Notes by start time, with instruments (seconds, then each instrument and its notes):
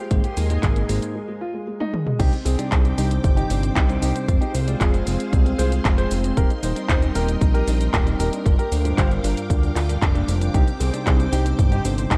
0.11 analog synth bass G#1, tine electric piano G#2 A#3 D#4 G#4 C5, grand piano G#3, string machine A#4 D#5 G#5 C6, kick, closed hi-hat, cabasa
0.24 grand piano G4, closed hi-hat, cabasa
0.37 analog synth bass D#2, grand piano G#3, open hi-hat, cabasa
0.50 tine electric piano G#2 A#3 D#4 G#4 D#5, grand piano G#3, closed hi-hat, cabasa
0.63 analog synth bass G#1, grand piano G#4, kick, clap, closed hi-hat, cabasa
0.76 grand piano G#3, closed hi-hat, cabasa
0.89 analog synth bass G#1, tine electric piano G#2 A#3 D#4 G#4 C5, grand piano G#3, open hi-hat, cabasa
1.02 closed hi-hat, cabasa
1.15 grand piano G#3
1.28 grand piano G#3
1.41 grand piano F4
1.54 grand piano G#3
1.67 grand piano G#3
1.80 grand piano D#4, high tom
1.93 grand piano G#3, mid tom
2.06 grand piano G#3, mid tom
2.19 analog synth bass C2, tine electric piano C3 G3 D4 D#4 C5, grand piano D#4 G4, string machine C5 G5 D6, kick, closed hi-hat, crash, cabasa
2.32 grand piano C4, closed hi-hat, cabasa
2.45 analog synth bass C2, grand piano C4 G#4, open hi-hat, cabasa
2.59 tine electric piano C3 G3 D4 D#4 D5, grand piano C4, closed hi-hat, cabasa
2.71 analog synth bass C2, grand piano C4 G#4, kick, clap, closed hi-hat, cabasa
2.85 grand piano C4, closed hi-hat, cabasa
2.98 analog synth bass C2, tine electric piano C3 G3 D4 D#4 C5, grand piano D#4 G4, open hi-hat, cabasa
3.11 grand piano C4, closed hi-hat, cabasa
3.24 analog synth bass G1, grand piano C4, kick, closed hi-hat, cabasa
3.36 grand piano D#4 G4, closed hi-hat, cabasa
3.50 analog synth bass G1, tine electric piano C3 G3 D4 D#4 C5, grand piano C4, open hi-hat, cabasa
3.63 grand piano C4, closed hi-hat, cabasa
3.76 analog synth bass C2, grand piano D#4 G4, kick, clap, closed hi-hat, cabasa
3.89 tine electric piano C3 G3 D4 D#4 C5, grand piano C4, closed hi-hat, cabasa
4.02 analog synth bass C2, grand piano D#4 G4, open hi-hat, cabasa
4.15 grand piano C4, closed hi-hat, cabasa
4.28 analog synth bass F1, tine electric piano G#3 C4 F4 C5, grand piano C4, string machine G#4 F5 C6, kick, closed hi-hat, cabasa
4.41 grand piano D#4 G4, closed hi-hat, cabasa
4.54 analog synth bass C2, grand piano C4, open hi-hat, cabasa
4.67 tine electric piano G#3 C4 F4 D5, grand piano C4, closed hi-hat, cabasa
4.80 analog synth bass F1, grand piano F4 G#4, kick, clap, closed hi-hat, cabasa
4.93 grand piano C4, closed hi-hat, cabasa
5.06 analog synth bass F1, tine electric piano G#3 C4 F4 C5, grand piano C4, open hi-hat, cabasa
5.20 closed hi-hat, cabasa
5.32 analog synth bass C2, grand piano C4, kick, closed hi-hat, cabasa
5.45 grand piano C4, closed hi-hat, cabasa
5.58 analog synth bass C2, tine electric piano G#3 C4 F4 C5, grand piano G#4 C5, open hi-hat, cabasa
5.71 grand piano C4, closed hi-hat, cabasa
5.85 analog synth bass F1, grand piano C4, kick, clap, closed hi-hat, cabasa
5.98 tine electric piano G#3 C4 F4 C5, grand piano G#4 C5, closed hi-hat, cabasa
6.11 analog synth bass F1, grand piano C4, open hi-hat, cabasa
6.24 grand piano C4, closed hi-hat, cabasa
6.37 analog synth bass D#1, tine electric piano G3 C4 D#4 A#4, grand piano G4 A#4, string machine A#4 D#5 G5, kick, closed hi-hat, cabasa
6.50 grand piano D#4, closed hi-hat, cabasa
6.63 analog synth bass D#1, grand piano D#4 C5, open hi-hat, cabasa
6.76 tine electric piano G3 C4 D#4 C5, grand piano D#4, closed hi-hat, cabasa
6.89 analog synth bass D#1, grand piano D#4 C5, kick, clap, closed hi-hat, cabasa
7.02 grand piano D#4, closed hi-hat, cabasa
7.15 analog synth bass D#1, tine electric piano G3 C4 D#4 A#4, grand piano G4 A#4, open hi-hat, cabasa
7.28 grand piano D#4, closed hi-hat, cabasa
7.41 analog synth bass A#1, grand piano D#4, kick, closed hi-hat, cabasa
7.54 grand piano G4 A#4, closed hi-hat, cabasa
7.67 analog synth bass A#1, tine electric piano G3 C4 D#4 A#4, grand piano D#4, open hi-hat, cabasa
7.80 grand piano D#4, closed hi-hat, cabasa
7.93 analog synth bass D#1, grand piano G4 A#4, kick, clap, closed hi-hat, cabasa
8.06 tine electric piano G3 C4 D#4 A#4, grand piano D#4, closed hi-hat, cabasa
8.20 analog synth bass D#1, grand piano G4 A#4, open hi-hat, cabasa
8.33 grand piano D4, closed hi-hat, cabasa
8.45 analog synth bass G1, tine electric piano G2 G3 D4 F4 A#4, grand piano D4, string machine F5 G5 D6, kick, closed hi-hat, cabasa
8.59 grand piano G4 A#4, closed hi-hat, cabasa
8.72 analog synth bass D2, grand piano D4, open hi-hat, cabasa
8.85 tine electric piano G2 G3 D4 F4 C5, grand piano D4, closed hi-hat, cabasa
8.98 analog synth bass G1, grand piano G4 C5, kick, clap, closed hi-hat, cabasa
9.11 grand piano D4, closed hi-hat, cabasa
9.23 analog synth bass G1, tine electric piano G2 G3 D4 F4 A#4, grand piano D4, open hi-hat, cabasa
9.37 closed hi-hat, cabasa
9.50 analog synth bass D2, grand piano D4, kick, closed hi-hat, cabasa
9.63 grand piano D4, closed hi-hat, cabasa
9.76 analog synth bass D2, grand piano D4 F4, clap, open hi-hat, cabasa
9.89 tine electric piano G2 G3 D4 F4 A#4, grand piano D4, closed hi-hat, cabasa
10.02 analog synth bass F1, grand piano D4, kick, clap, closed hi-hat, cabasa
10.15 grand piano A#3 D4, closed hi-hat, cabasa
10.28 analog synth bass F1, tine electric piano C3 G3 D4 F4 C5, grand piano D4, open hi-hat, cabasa
10.41 grand piano D4, closed hi-hat, cabasa
10.54 analog synth bass C2, tine electric piano C3 G3 D4 D#4 C5, grand piano D#4 G4, string machine C5, kick, closed hi-hat, cabasa
10.67 grand piano C4, closed hi-hat, cabasa
10.80 analog synth bass C2, grand piano C4 G#4, open hi-hat, cabasa
10.93 tine electric piano C3 G3 D4 D#4 D5, grand piano C4, closed hi-hat, cabasa
11.06 analog synth bass C2, grand piano C4 G#4, kick, clap, closed hi-hat, cabasa
11.20 grand piano C4, closed hi-hat, cabasa
11.32 analog synth bass C2, tine electric piano C3 G3 D4 D#4 C5, grand piano D#4 G4, open hi-hat, cabasa
11.46 grand piano C4, closed hi-hat, cabasa
11.59 analog synth bass G1, grand piano C4, kick, closed hi-hat, cabasa
11.72 grand piano D#4 G4, closed hi-hat, cabasa
11.85 analog synth bass G1, tine electric piano C3 G3 D4 D#4 C5, grand piano C4, open hi-hat, cabasa
11.98 grand piano C4, closed hi-hat, cabasa
12.11 analog synth bass C2, grand piano D#4 G4, kick, clap, closed hi-hat, cabasa